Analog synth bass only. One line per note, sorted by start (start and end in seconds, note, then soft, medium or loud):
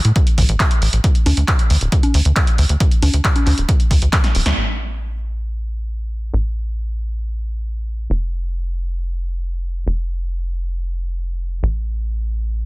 0.05 0.12 A2 medium
0.38 0.45 A1 medium
0.49 0.56 A1 medium
0.82 0.89 A1 loud
0.93 1.00 A1 medium
1.26 1.33 D2 loud
1.37 1.44 D2 medium
1.70 1.77 D2 loud
1.81 1.88 D1 medium
2.14 2.22 D2 medium
2.25 2.33 D2 medium
2.58 2.66 D2 loud
2.69 2.77 D2 medium
3.03 3.10 D2 loud
3.14 3.21 D2 medium
3.47 3.54 D2 loud
3.58 3.65 D1 medium
3.91 3.98 D2 medium
4.02 4.09 D2 medium
4.35 4.42 D1 medium
4.46 4.53 D2 medium
4.57 6.31 A1 medium
6.33 8.08 A1 medium
8.10 9.84 F1 medium
9.86 11.61 F1 medium
11.63 12.65 A1 medium